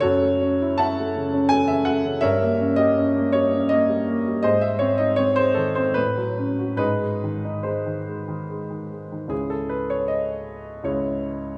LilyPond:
<<
  \new Staff \with { instrumentName = "Grand piano" } { \time 3/4 \key cis \minor \tempo 4 = 79 <fis' a' cis''>4 <e'' fis'' a''>4 gis''16 e''16 fis''8 | <bes' des'' e''>8. dis''8. des''8 dis''4 | <gis' bis' dis''>16 e''16 cis''16 dis''16 cis''16 bis'16 a'16 bis'16 b'4 | <dis' gis' b'>4 <dis' gis' bis'>4 r4 |
gis'16 a'16 b'16 cis''16 dis''4 cis''4 | }
  \new Staff \with { instrumentName = "Grand piano" } { \clef bass \time 3/4 \key cis \minor fis,16 a16 cis'16 e'16 cis'16 a16 cis16 cis'16 a16 cis16 a16 cis16 | g,16 bes16 des'16 g'16 des'16 bes16 g16 des'16 bes16 g16 bes16 g16 | gis,16 gis16 bis16 dis'16 bis16 gis16 dis16 bis16 a,16 fis16 cis'16 fis'16 | gis,16 gis16 dis16 dis'16 gis16 dis16 gis16 dis16 gis16 dis16 gis16 dis16 |
<cis, gis e'>2 <cis, gis e'>4 | }
>>